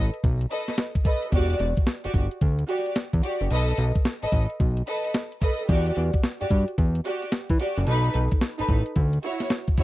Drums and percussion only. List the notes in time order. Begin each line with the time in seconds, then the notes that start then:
0.14 closed hi-hat
0.24 kick, closed hi-hat
0.41 closed hi-hat
0.51 closed hi-hat
0.68 snare, closed hi-hat
0.78 snare, closed hi-hat
0.95 kick, closed hi-hat
1.05 kick, closed hi-hat
1.22 closed hi-hat
1.32 kick, closed hi-hat
1.50 closed hi-hat
1.60 closed hi-hat
1.77 kick, closed hi-hat
1.87 snare, closed hi-hat
2.04 closed hi-hat
2.14 kick, closed hi-hat
2.31 closed hi-hat
2.41 kick, closed hi-hat
2.59 closed hi-hat
2.69 closed hi-hat
2.86 closed hi-hat
2.96 snare, closed hi-hat
3.13 kick, closed hi-hat
3.23 closed hi-hat
3.41 closed hi-hat
3.51 closed hi-hat
3.68 closed hi-hat
3.78 closed hi-hat
3.95 kick, closed hi-hat
4.05 snare, closed hi-hat
4.23 closed hi-hat
4.32 kick, closed hi-hat
4.50 closed hi-hat
4.60 kick, closed hi-hat
4.77 closed hi-hat
4.87 closed hi-hat
5.05 closed hi-hat
5.14 snare, closed hi-hat
5.32 closed hi-hat
5.42 kick, closed hi-hat
5.59 closed hi-hat
5.69 kick, closed hi-hat
5.86 closed hi-hat
5.96 closed hi-hat
6.13 kick, closed hi-hat
6.24 snare, closed hi-hat
6.41 closed hi-hat
6.50 kick, closed hi-hat
6.68 closed hi-hat
6.78 kick, closed hi-hat
6.95 closed hi-hat
7.05 closed hi-hat
7.22 closed hi-hat
7.32 snare, closed hi-hat
7.49 kick, closed hi-hat
7.60 closed hi-hat
7.77 closed hi-hat
7.87 closed hi-hat
8.04 closed hi-hat
8.14 closed hi-hat
8.31 kick, closed hi-hat
8.41 snare, closed hi-hat
8.59 closed hi-hat
8.68 kick, closed hi-hat
8.86 closed hi-hat
8.96 kick, closed hi-hat
9.13 closed hi-hat
9.23 closed hi-hat
9.40 snare, closed hi-hat
9.50 snare, closed hi-hat
9.68 kick, closed hi-hat
9.78 kick, closed hi-hat